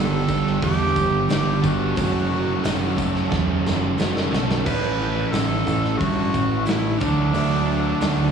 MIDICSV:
0, 0, Header, 1, 8, 480
1, 0, Start_track
1, 0, Tempo, 671892
1, 1407, Time_signature, 4, 2, 24, 8
1, 5941, End_track
2, 0, Start_track
2, 0, Title_t, "Tenor saxophone"
2, 0, Program_c, 0, 66
2, 0, Note_on_c, 0, 69, 115
2, 443, Note_off_c, 0, 69, 0
2, 457, Note_on_c, 0, 67, 113
2, 904, Note_off_c, 0, 67, 0
2, 946, Note_on_c, 0, 67, 94
2, 1185, Note_on_c, 0, 66, 89
2, 1196, Note_off_c, 0, 67, 0
2, 2618, Note_off_c, 0, 66, 0
2, 3331, Note_on_c, 0, 71, 121
2, 3797, Note_on_c, 0, 69, 120
2, 3808, Note_off_c, 0, 71, 0
2, 4271, Note_on_c, 0, 66, 110
2, 4282, Note_off_c, 0, 69, 0
2, 4752, Note_off_c, 0, 66, 0
2, 4757, Note_on_c, 0, 64, 86
2, 4989, Note_on_c, 0, 62, 89
2, 5000, Note_off_c, 0, 64, 0
2, 5941, Note_off_c, 0, 62, 0
2, 5941, End_track
3, 0, Start_track
3, 0, Title_t, "Tonewheel organ"
3, 0, Program_c, 1, 16
3, 0, Note_on_c, 1, 55, 81
3, 0, Note_on_c, 1, 62, 70
3, 0, Note_on_c, 1, 71, 74
3, 1390, Note_off_c, 1, 55, 0
3, 1390, Note_off_c, 1, 62, 0
3, 1390, Note_off_c, 1, 71, 0
3, 1409, Note_on_c, 1, 54, 68
3, 1409, Note_on_c, 1, 61, 68
3, 1411, Note_on_c, 1, 69, 74
3, 3311, Note_off_c, 1, 54, 0
3, 3311, Note_off_c, 1, 61, 0
3, 3312, Note_off_c, 1, 69, 0
3, 3333, Note_on_c, 1, 69, 69
3, 3334, Note_on_c, 1, 52, 75
3, 4993, Note_off_c, 1, 52, 0
3, 4993, Note_off_c, 1, 69, 0
3, 5005, Note_on_c, 1, 69, 78
3, 5008, Note_on_c, 1, 54, 76
3, 5009, Note_on_c, 1, 62, 76
3, 5941, Note_off_c, 1, 54, 0
3, 5941, Note_off_c, 1, 62, 0
3, 5941, Note_off_c, 1, 69, 0
3, 5941, End_track
4, 0, Start_track
4, 0, Title_t, "Steel-string acoustic guitar"
4, 0, Program_c, 2, 25
4, 0, Note_on_c, 2, 43, 77
4, 0, Note_on_c, 2, 50, 82
4, 0, Note_on_c, 2, 55, 97
4, 0, Note_on_c, 2, 59, 86
4, 0, Note_on_c, 2, 62, 89
4, 0, Note_on_c, 2, 67, 96
4, 191, Note_off_c, 2, 67, 0
4, 192, Note_off_c, 2, 62, 0
4, 199, Note_off_c, 2, 59, 0
4, 200, Note_on_c, 2, 67, 49
4, 201, Note_off_c, 2, 43, 0
4, 201, Note_on_c, 2, 62, 60
4, 203, Note_off_c, 2, 50, 0
4, 203, Note_off_c, 2, 55, 0
4, 207, Note_on_c, 2, 59, 49
4, 214, Note_on_c, 2, 55, 45
4, 429, Note_off_c, 2, 55, 0
4, 438, Note_off_c, 2, 59, 0
4, 438, Note_off_c, 2, 62, 0
4, 438, Note_on_c, 2, 55, 64
4, 442, Note_off_c, 2, 67, 0
4, 447, Note_on_c, 2, 59, 62
4, 447, Note_on_c, 2, 62, 64
4, 455, Note_on_c, 2, 67, 62
4, 914, Note_off_c, 2, 55, 0
4, 918, Note_on_c, 2, 43, 83
4, 919, Note_off_c, 2, 59, 0
4, 919, Note_off_c, 2, 62, 0
4, 923, Note_on_c, 2, 50, 84
4, 923, Note_on_c, 2, 55, 81
4, 925, Note_off_c, 2, 67, 0
4, 928, Note_on_c, 2, 59, 77
4, 928, Note_on_c, 2, 62, 87
4, 933, Note_on_c, 2, 67, 91
4, 1156, Note_off_c, 2, 62, 0
4, 1162, Note_off_c, 2, 43, 0
4, 1164, Note_off_c, 2, 59, 0
4, 1165, Note_off_c, 2, 50, 0
4, 1165, Note_off_c, 2, 55, 0
4, 1165, Note_on_c, 2, 62, 57
4, 1170, Note_off_c, 2, 67, 0
4, 1173, Note_on_c, 2, 59, 52
4, 1175, Note_on_c, 2, 55, 53
4, 1398, Note_on_c, 2, 42, 67
4, 1401, Note_off_c, 2, 55, 0
4, 1403, Note_off_c, 2, 59, 0
4, 1403, Note_on_c, 2, 49, 85
4, 1404, Note_on_c, 2, 54, 90
4, 1406, Note_off_c, 2, 62, 0
4, 1406, Note_on_c, 2, 57, 89
4, 1409, Note_on_c, 2, 61, 88
4, 1414, Note_on_c, 2, 66, 91
4, 1638, Note_off_c, 2, 66, 0
4, 1643, Note_off_c, 2, 42, 0
4, 1643, Note_off_c, 2, 61, 0
4, 1645, Note_off_c, 2, 49, 0
4, 1646, Note_off_c, 2, 54, 0
4, 1647, Note_off_c, 2, 57, 0
4, 1647, Note_on_c, 2, 66, 53
4, 1652, Note_on_c, 2, 61, 47
4, 1659, Note_on_c, 2, 54, 46
4, 1660, Note_on_c, 2, 57, 49
4, 1880, Note_off_c, 2, 54, 0
4, 1882, Note_off_c, 2, 57, 0
4, 1884, Note_off_c, 2, 61, 0
4, 1885, Note_on_c, 2, 42, 97
4, 1887, Note_off_c, 2, 66, 0
4, 1888, Note_on_c, 2, 49, 96
4, 1889, Note_on_c, 2, 54, 91
4, 1891, Note_on_c, 2, 57, 109
4, 1892, Note_on_c, 2, 61, 94
4, 1895, Note_on_c, 2, 66, 102
4, 2119, Note_off_c, 2, 66, 0
4, 2126, Note_off_c, 2, 42, 0
4, 2127, Note_on_c, 2, 66, 62
4, 2128, Note_off_c, 2, 49, 0
4, 2129, Note_off_c, 2, 54, 0
4, 2130, Note_off_c, 2, 57, 0
4, 2130, Note_off_c, 2, 61, 0
4, 2138, Note_on_c, 2, 61, 61
4, 2141, Note_on_c, 2, 57, 62
4, 2145, Note_on_c, 2, 54, 53
4, 2350, Note_off_c, 2, 54, 0
4, 2356, Note_off_c, 2, 57, 0
4, 2359, Note_on_c, 2, 54, 71
4, 2363, Note_off_c, 2, 61, 0
4, 2364, Note_on_c, 2, 57, 70
4, 2366, Note_off_c, 2, 66, 0
4, 2372, Note_on_c, 2, 61, 66
4, 2374, Note_on_c, 2, 66, 75
4, 2837, Note_off_c, 2, 54, 0
4, 2842, Note_off_c, 2, 61, 0
4, 2843, Note_on_c, 2, 42, 89
4, 2845, Note_off_c, 2, 66, 0
4, 2845, Note_on_c, 2, 49, 90
4, 2846, Note_on_c, 2, 54, 97
4, 2849, Note_off_c, 2, 57, 0
4, 2850, Note_on_c, 2, 61, 102
4, 2852, Note_on_c, 2, 57, 100
4, 2853, Note_on_c, 2, 66, 90
4, 3073, Note_off_c, 2, 66, 0
4, 3081, Note_off_c, 2, 57, 0
4, 3081, Note_off_c, 2, 61, 0
4, 3082, Note_on_c, 2, 66, 59
4, 3086, Note_off_c, 2, 42, 0
4, 3087, Note_off_c, 2, 49, 0
4, 3087, Note_off_c, 2, 54, 0
4, 3090, Note_on_c, 2, 57, 56
4, 3090, Note_on_c, 2, 61, 59
4, 3098, Note_on_c, 2, 54, 50
4, 3325, Note_off_c, 2, 57, 0
4, 3325, Note_off_c, 2, 66, 0
4, 3325, Note_on_c, 2, 45, 71
4, 3326, Note_off_c, 2, 54, 0
4, 3326, Note_off_c, 2, 61, 0
4, 3328, Note_on_c, 2, 52, 80
4, 3334, Note_on_c, 2, 57, 90
4, 3334, Note_on_c, 2, 61, 88
4, 3336, Note_on_c, 2, 64, 83
4, 3561, Note_off_c, 2, 64, 0
4, 3567, Note_off_c, 2, 45, 0
4, 3569, Note_off_c, 2, 52, 0
4, 3569, Note_off_c, 2, 61, 0
4, 3570, Note_on_c, 2, 64, 56
4, 3571, Note_off_c, 2, 57, 0
4, 3577, Note_on_c, 2, 61, 47
4, 3586, Note_on_c, 2, 57, 41
4, 3805, Note_off_c, 2, 61, 0
4, 3806, Note_off_c, 2, 57, 0
4, 3807, Note_on_c, 2, 45, 87
4, 3808, Note_off_c, 2, 64, 0
4, 3809, Note_on_c, 2, 52, 84
4, 3814, Note_on_c, 2, 61, 84
4, 3815, Note_on_c, 2, 57, 83
4, 3816, Note_on_c, 2, 64, 87
4, 4033, Note_off_c, 2, 64, 0
4, 4042, Note_off_c, 2, 61, 0
4, 4042, Note_on_c, 2, 64, 54
4, 4048, Note_off_c, 2, 45, 0
4, 4048, Note_off_c, 2, 57, 0
4, 4049, Note_off_c, 2, 52, 0
4, 4050, Note_on_c, 2, 61, 48
4, 4056, Note_on_c, 2, 57, 48
4, 4273, Note_off_c, 2, 57, 0
4, 4277, Note_on_c, 2, 52, 66
4, 4281, Note_on_c, 2, 57, 65
4, 4282, Note_off_c, 2, 61, 0
4, 4285, Note_off_c, 2, 64, 0
4, 4291, Note_on_c, 2, 61, 73
4, 4297, Note_on_c, 2, 64, 61
4, 4746, Note_off_c, 2, 52, 0
4, 4749, Note_off_c, 2, 57, 0
4, 4755, Note_on_c, 2, 52, 77
4, 4756, Note_off_c, 2, 61, 0
4, 4756, Note_on_c, 2, 45, 86
4, 4757, Note_off_c, 2, 64, 0
4, 4757, Note_on_c, 2, 57, 89
4, 4765, Note_on_c, 2, 61, 79
4, 4765, Note_on_c, 2, 64, 88
4, 5001, Note_off_c, 2, 45, 0
4, 5001, Note_off_c, 2, 52, 0
4, 5002, Note_off_c, 2, 57, 0
4, 5002, Note_off_c, 2, 64, 0
4, 5005, Note_on_c, 2, 66, 60
4, 5006, Note_off_c, 2, 61, 0
4, 5015, Note_on_c, 2, 62, 51
4, 5023, Note_on_c, 2, 57, 49
4, 5238, Note_off_c, 2, 57, 0
4, 5242, Note_off_c, 2, 62, 0
4, 5245, Note_on_c, 2, 50, 69
4, 5246, Note_off_c, 2, 66, 0
4, 5246, Note_on_c, 2, 57, 86
4, 5251, Note_on_c, 2, 62, 85
4, 5256, Note_on_c, 2, 66, 92
4, 5474, Note_off_c, 2, 66, 0
4, 5483, Note_off_c, 2, 62, 0
4, 5483, Note_on_c, 2, 66, 48
4, 5485, Note_off_c, 2, 50, 0
4, 5486, Note_off_c, 2, 57, 0
4, 5492, Note_on_c, 2, 62, 47
4, 5499, Note_on_c, 2, 57, 45
4, 5716, Note_off_c, 2, 57, 0
4, 5716, Note_off_c, 2, 62, 0
4, 5718, Note_off_c, 2, 66, 0
4, 5721, Note_on_c, 2, 50, 97
4, 5724, Note_on_c, 2, 57, 99
4, 5724, Note_on_c, 2, 62, 95
4, 5727, Note_on_c, 2, 66, 98
4, 5941, Note_off_c, 2, 50, 0
4, 5941, Note_off_c, 2, 57, 0
4, 5941, Note_off_c, 2, 62, 0
4, 5941, Note_off_c, 2, 66, 0
4, 5941, End_track
5, 0, Start_track
5, 0, Title_t, "Overdriven electric guitar"
5, 0, Program_c, 3, 29
5, 1174, Note_on_c, 3, 67, 86
5, 1396, Note_off_c, 3, 67, 0
5, 4040, Note_on_c, 3, 45, 90
5, 4046, Note_on_c, 3, 52, 85
5, 4277, Note_off_c, 3, 45, 0
5, 4282, Note_off_c, 3, 52, 0
5, 4286, Note_on_c, 3, 45, 90
5, 4756, Note_off_c, 3, 45, 0
5, 4999, Note_on_c, 3, 50, 97
5, 5006, Note_on_c, 3, 54, 104
5, 5237, Note_off_c, 3, 50, 0
5, 5241, Note_off_c, 3, 54, 0
5, 5249, Note_on_c, 3, 54, 107
5, 5716, Note_off_c, 3, 54, 0
5, 5725, Note_on_c, 3, 54, 91
5, 5941, Note_off_c, 3, 54, 0
5, 5941, End_track
6, 0, Start_track
6, 0, Title_t, "Distorted electric guitar"
6, 0, Program_c, 4, 30
6, 0, Note_on_c, 4, 43, 95
6, 0, Note_on_c, 4, 50, 98
6, 0, Note_on_c, 4, 55, 105
6, 0, Note_on_c, 4, 59, 91
6, 0, Note_on_c, 4, 62, 105
6, 1147, Note_off_c, 4, 43, 0
6, 1149, Note_off_c, 4, 62, 0
6, 1152, Note_off_c, 4, 50, 0
6, 1154, Note_off_c, 4, 55, 0
6, 1156, Note_off_c, 4, 59, 0
6, 1178, Note_on_c, 4, 50, 76
6, 1182, Note_on_c, 4, 43, 73
6, 1393, Note_off_c, 4, 43, 0
6, 1398, Note_off_c, 4, 50, 0
6, 3098, Note_on_c, 4, 49, 75
6, 3104, Note_on_c, 4, 42, 58
6, 3312, Note_off_c, 4, 42, 0
6, 3319, Note_off_c, 4, 49, 0
6, 4990, Note_on_c, 4, 50, 85
6, 5003, Note_on_c, 4, 54, 85
6, 5941, Note_off_c, 4, 50, 0
6, 5941, Note_off_c, 4, 54, 0
6, 5941, End_track
7, 0, Start_track
7, 0, Title_t, "Picked electric bass"
7, 0, Program_c, 5, 34
7, 0, Note_on_c, 5, 31, 96
7, 171, Note_off_c, 5, 31, 0
7, 205, Note_on_c, 5, 31, 105
7, 413, Note_off_c, 5, 31, 0
7, 449, Note_on_c, 5, 40, 106
7, 656, Note_off_c, 5, 40, 0
7, 689, Note_on_c, 5, 31, 101
7, 896, Note_off_c, 5, 31, 0
7, 927, Note_on_c, 5, 31, 88
7, 1135, Note_off_c, 5, 31, 0
7, 1168, Note_on_c, 5, 31, 93
7, 1376, Note_off_c, 5, 31, 0
7, 1411, Note_on_c, 5, 30, 111
7, 1827, Note_off_c, 5, 30, 0
7, 1893, Note_on_c, 5, 30, 97
7, 2100, Note_off_c, 5, 30, 0
7, 2130, Note_on_c, 5, 30, 92
7, 2338, Note_off_c, 5, 30, 0
7, 2370, Note_on_c, 5, 40, 91
7, 2578, Note_off_c, 5, 40, 0
7, 2613, Note_on_c, 5, 30, 92
7, 2820, Note_off_c, 5, 30, 0
7, 2851, Note_on_c, 5, 30, 89
7, 3059, Note_off_c, 5, 30, 0
7, 3087, Note_on_c, 5, 35, 83
7, 3297, Note_off_c, 5, 35, 0
7, 3331, Note_on_c, 5, 33, 94
7, 3747, Note_off_c, 5, 33, 0
7, 3805, Note_on_c, 5, 33, 97
7, 4015, Note_off_c, 5, 33, 0
7, 4051, Note_on_c, 5, 33, 102
7, 4258, Note_off_c, 5, 33, 0
7, 4291, Note_on_c, 5, 43, 101
7, 4498, Note_off_c, 5, 43, 0
7, 4531, Note_on_c, 5, 33, 98
7, 4738, Note_off_c, 5, 33, 0
7, 4773, Note_on_c, 5, 33, 84
7, 4979, Note_off_c, 5, 33, 0
7, 5011, Note_on_c, 5, 38, 96
7, 5217, Note_off_c, 5, 38, 0
7, 5241, Note_on_c, 5, 38, 99
7, 5660, Note_off_c, 5, 38, 0
7, 5723, Note_on_c, 5, 38, 88
7, 5932, Note_off_c, 5, 38, 0
7, 5941, End_track
8, 0, Start_track
8, 0, Title_t, "Drums"
8, 204, Note_on_c, 9, 36, 93
8, 207, Note_on_c, 9, 54, 80
8, 276, Note_off_c, 9, 36, 0
8, 278, Note_off_c, 9, 54, 0
8, 335, Note_on_c, 9, 38, 30
8, 407, Note_off_c, 9, 38, 0
8, 444, Note_on_c, 9, 54, 32
8, 446, Note_on_c, 9, 36, 122
8, 448, Note_on_c, 9, 46, 64
8, 516, Note_off_c, 9, 54, 0
8, 518, Note_off_c, 9, 36, 0
8, 519, Note_off_c, 9, 46, 0
8, 687, Note_on_c, 9, 36, 92
8, 687, Note_on_c, 9, 54, 85
8, 759, Note_off_c, 9, 36, 0
8, 759, Note_off_c, 9, 54, 0
8, 930, Note_on_c, 9, 46, 61
8, 931, Note_on_c, 9, 54, 93
8, 937, Note_on_c, 9, 38, 116
8, 1002, Note_off_c, 9, 46, 0
8, 1002, Note_off_c, 9, 54, 0
8, 1009, Note_off_c, 9, 38, 0
8, 1170, Note_on_c, 9, 36, 97
8, 1170, Note_on_c, 9, 54, 85
8, 1241, Note_off_c, 9, 36, 0
8, 1242, Note_off_c, 9, 54, 0
8, 1410, Note_on_c, 9, 36, 121
8, 1410, Note_on_c, 9, 46, 69
8, 1415, Note_on_c, 9, 54, 77
8, 1481, Note_off_c, 9, 36, 0
8, 1482, Note_off_c, 9, 46, 0
8, 1486, Note_off_c, 9, 54, 0
8, 1890, Note_on_c, 9, 46, 71
8, 1894, Note_on_c, 9, 54, 109
8, 1898, Note_on_c, 9, 38, 114
8, 1962, Note_off_c, 9, 46, 0
8, 1966, Note_off_c, 9, 54, 0
8, 1969, Note_off_c, 9, 38, 0
8, 2130, Note_on_c, 9, 36, 92
8, 2132, Note_on_c, 9, 54, 93
8, 2202, Note_off_c, 9, 36, 0
8, 2203, Note_off_c, 9, 54, 0
8, 2255, Note_on_c, 9, 38, 34
8, 2327, Note_off_c, 9, 38, 0
8, 2371, Note_on_c, 9, 36, 119
8, 2377, Note_on_c, 9, 38, 70
8, 2381, Note_on_c, 9, 54, 30
8, 2443, Note_off_c, 9, 36, 0
8, 2448, Note_off_c, 9, 38, 0
8, 2453, Note_off_c, 9, 54, 0
8, 2618, Note_on_c, 9, 38, 76
8, 2620, Note_on_c, 9, 54, 81
8, 2690, Note_off_c, 9, 38, 0
8, 2692, Note_off_c, 9, 54, 0
8, 2855, Note_on_c, 9, 54, 93
8, 2862, Note_on_c, 9, 38, 91
8, 2927, Note_off_c, 9, 54, 0
8, 2934, Note_off_c, 9, 38, 0
8, 2980, Note_on_c, 9, 38, 88
8, 3051, Note_off_c, 9, 38, 0
8, 3103, Note_on_c, 9, 38, 108
8, 3106, Note_on_c, 9, 54, 73
8, 3175, Note_off_c, 9, 38, 0
8, 3177, Note_off_c, 9, 54, 0
8, 3219, Note_on_c, 9, 38, 103
8, 3290, Note_off_c, 9, 38, 0
8, 3331, Note_on_c, 9, 36, 125
8, 3332, Note_on_c, 9, 49, 105
8, 3333, Note_on_c, 9, 54, 77
8, 3403, Note_off_c, 9, 36, 0
8, 3403, Note_off_c, 9, 49, 0
8, 3404, Note_off_c, 9, 54, 0
8, 3585, Note_on_c, 9, 54, 30
8, 3656, Note_off_c, 9, 54, 0
8, 3808, Note_on_c, 9, 46, 61
8, 3815, Note_on_c, 9, 38, 118
8, 3820, Note_on_c, 9, 54, 104
8, 3879, Note_off_c, 9, 46, 0
8, 3887, Note_off_c, 9, 38, 0
8, 3891, Note_off_c, 9, 54, 0
8, 4051, Note_on_c, 9, 36, 84
8, 4056, Note_on_c, 9, 54, 82
8, 4122, Note_off_c, 9, 36, 0
8, 4127, Note_off_c, 9, 54, 0
8, 4177, Note_on_c, 9, 38, 32
8, 4249, Note_off_c, 9, 38, 0
8, 4291, Note_on_c, 9, 46, 68
8, 4292, Note_on_c, 9, 36, 122
8, 4300, Note_on_c, 9, 54, 30
8, 4362, Note_off_c, 9, 46, 0
8, 4363, Note_off_c, 9, 36, 0
8, 4371, Note_off_c, 9, 54, 0
8, 4531, Note_on_c, 9, 36, 99
8, 4532, Note_on_c, 9, 54, 81
8, 4603, Note_off_c, 9, 36, 0
8, 4604, Note_off_c, 9, 54, 0
8, 4763, Note_on_c, 9, 54, 90
8, 4772, Note_on_c, 9, 46, 60
8, 4780, Note_on_c, 9, 38, 114
8, 4835, Note_off_c, 9, 54, 0
8, 4844, Note_off_c, 9, 46, 0
8, 4851, Note_off_c, 9, 38, 0
8, 5004, Note_on_c, 9, 54, 69
8, 5011, Note_on_c, 9, 36, 126
8, 5075, Note_off_c, 9, 54, 0
8, 5082, Note_off_c, 9, 36, 0
8, 5245, Note_on_c, 9, 54, 68
8, 5249, Note_on_c, 9, 46, 66
8, 5316, Note_off_c, 9, 54, 0
8, 5320, Note_off_c, 9, 46, 0
8, 5485, Note_on_c, 9, 54, 29
8, 5556, Note_off_c, 9, 54, 0
8, 5726, Note_on_c, 9, 46, 65
8, 5727, Note_on_c, 9, 54, 85
8, 5733, Note_on_c, 9, 38, 127
8, 5797, Note_off_c, 9, 46, 0
8, 5799, Note_off_c, 9, 54, 0
8, 5805, Note_off_c, 9, 38, 0
8, 5941, End_track
0, 0, End_of_file